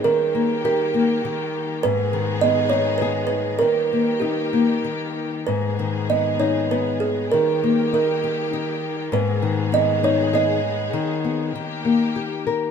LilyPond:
<<
  \new Staff \with { instrumentName = "Kalimba" } { \time 3/4 \key gis \minor \tempo 4 = 99 ais'4 ais'4. r8 | b'4 dis''8 cis''8 b'8 b'8 | ais'4 g'4. r8 | b'4 dis''8 cis''8 b'8 gis'8 |
ais'4 ais'4. r8 | b'4 dis''8 cis''8 dis''4~ | dis''2 r4 | }
  \new Staff \with { instrumentName = "String section" } { \time 3/4 \key gis \minor << { <ais g'>2. | <b gis'>2. | <ais g'>2. | <b gis'>2. |
<ais g'>2. | <b gis'>2.~ | <b gis'>4 <ais g'>2 | } \\ { dis2.~ | dis2.~ | dis2.~ | dis2. |
dis2.~ | dis2.~ | dis2. | } >> }
  \new Staff \with { instrumentName = "Nylon-string guitar" } { \time 3/4 \key gis \minor dis8 ais8 g'8 ais8 dis4 | gis,8 dis8 b8 dis'8 gis'4 | dis8 ais8 dis'8 ais8 dis4 | gis,8 dis8 b8 dis'8 b4 |
dis8 ais8 dis'8 g'8 dis'4 | gis,8 dis8 b8 dis'8 gis'4 | dis8 b8 dis8 ais8 g'8 ais'8 | }
>>